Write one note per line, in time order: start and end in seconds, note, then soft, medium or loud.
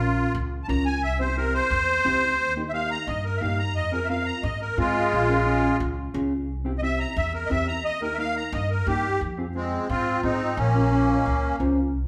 0.00 0.21 A#1 medium
0.00 0.24 C#4 medium
0.00 0.32 F4 loud
0.00 0.25 F4 medium
0.00 0.25 A#4 medium
0.35 0.62 C#2 loud
0.64 0.67 A5 medium
0.68 1.03 C#2 loud
0.68 0.86 C#4 medium
0.68 0.87 F4 medium
0.68 0.87 A#4 medium
0.68 0.85 A#5 medium
0.86 1.02 G#5 loud
1.03 1.57 C2 loud
1.03 1.20 E5 loud
1.20 1.26 C4 medium
1.20 1.26 E4 medium
1.20 1.26 G4 medium
1.20 1.37 C5 medium
1.37 1.61 C4 medium
1.37 1.61 E4 medium
1.37 1.61 G4 medium
1.37 1.54 A#4 medium
1.54 2.53 C5 loud
1.71 1.98 E2 loud
2.05 2.39 C#2 loud
2.05 2.23 C4 medium
2.05 2.23 E4 medium
2.05 2.24 G4 medium
2.39 2.94 D#2 loud
2.56 2.62 A#3 medium
2.56 2.63 D#4 medium
2.56 2.63 G4 medium
2.69 2.97 A#3 medium
2.69 2.72 E5 medium
2.74 2.97 D#4 medium
2.74 2.97 G4 medium
2.74 2.90 F5 loud
2.91 3.07 A#5 loud
3.07 3.35 G2 loud
3.07 3.24 D#5 medium
3.25 3.41 A#4 medium
3.37 3.59 A#3 medium
3.37 3.40 E5 medium
3.41 3.75 G2 medium
3.41 3.60 D#4 medium
3.41 3.60 G4 medium
3.41 3.58 F5 medium
3.59 3.75 A#5 medium
3.75 4.30 F2 loud
3.75 3.92 D#5 medium
3.92 3.98 C4 medium
3.92 3.99 F4 medium
3.92 3.99 G#4 medium
3.92 4.09 A#4 medium
4.05 4.07 E5 medium
4.09 4.34 C4 medium
4.09 4.34 F4 medium
4.09 4.34 A#4 medium
4.09 4.26 F5 medium
4.26 4.43 A#5 medium
4.43 4.71 G#2 loud
4.43 4.60 D#5 medium
4.61 4.77 A#4 medium
4.77 5.14 G#2 medium
4.77 5.76 G#3 medium
4.77 4.96 C4 medium
4.77 4.96 F4 medium
4.77 5.77 F4 loud
4.77 4.96 G#4 medium
5.12 5.67 A#1 medium
5.29 5.35 C#4 medium
5.29 5.35 F4 medium
5.29 5.35 A#4 medium
5.46 5.70 C#4 medium
5.46 5.70 F4 medium
5.46 5.70 G#4 medium
5.80 6.07 C#2 loud
6.14 6.49 C#2 loud
6.14 6.32 C#4 medium
6.14 6.32 F4 medium
6.14 6.32 G#4 loud
6.49 7.03 C2 loud
6.65 6.71 C4 medium
6.65 6.72 E4 medium
6.65 6.72 G4 medium
6.79 7.06 C4 medium
6.79 6.81 D#5 medium
6.83 7.06 E4 medium
6.83 7.07 G4 medium
6.83 6.99 E5 loud
7.00 7.16 A#5 medium
7.16 7.44 E2 loud
7.16 7.33 E5 medium
7.34 7.50 A#4 medium
7.46 7.48 D#5 medium
7.50 7.84 E2 medium
7.50 7.68 C4 medium
7.50 7.68 E4 medium
7.50 7.69 G4 medium
7.50 7.67 E5 loud
7.68 7.84 A#5 medium
7.84 8.39 D#2 loud
7.84 8.01 D#5 loud
8.01 8.07 A#3 medium
8.01 8.07 D#4 medium
8.01 8.08 G4 medium
8.01 8.18 A#4 medium
8.14 8.42 A#3 medium
8.14 8.17 E5 medium
8.19 8.43 D#4 medium
8.19 8.43 A#4 medium
8.19 8.35 F5 loud
8.36 8.53 A#5 medium
8.52 8.80 G2 loud
8.52 8.70 D#5 medium
8.70 8.87 A#4 medium
8.87 9.14 G2 loud
8.87 9.05 A#3 medium
8.87 9.05 D#4 medium
8.87 9.20 G4 loud
8.87 9.05 G4 medium
9.21 9.76 F2 medium
9.38 9.44 C4 medium
9.38 9.44 F4 medium
9.38 9.44 G#4 medium
9.55 9.87 G#3 medium
9.55 9.79 C4 medium
9.55 9.88 C4 medium
9.55 9.79 F4 medium
9.55 9.79 G#4 medium
9.89 10.17 G#2 loud
9.89 10.21 C4 medium
9.89 10.21 F4 medium
10.23 10.59 G#2 medium
10.23 10.55 C4 medium
10.23 10.41 C4 medium
10.23 10.58 D#4 medium
10.23 10.42 F4 medium
10.23 10.42 G#4 medium
10.57 11.12 A#1 loud
10.57 11.56 A#3 medium
10.57 11.56 C#4 medium
10.74 10.81 C#4 medium
10.74 10.81 F4 medium
10.74 10.81 A#4 medium
10.92 11.16 C#4 medium
10.92 11.16 F4 medium
10.92 11.16 A#4 medium
11.09 11.17 C#5 medium
11.17 11.25 D#5 medium
11.26 11.53 C#2 loud
11.26 11.50 F5 medium
11.52 11.60 G#5 medium
11.60 11.94 C#2 medium
11.60 11.78 C#4 medium
11.60 11.78 F4 medium
11.60 11.78 C5 loud
11.60 11.92 A#5 medium
11.94 12.08 C2 medium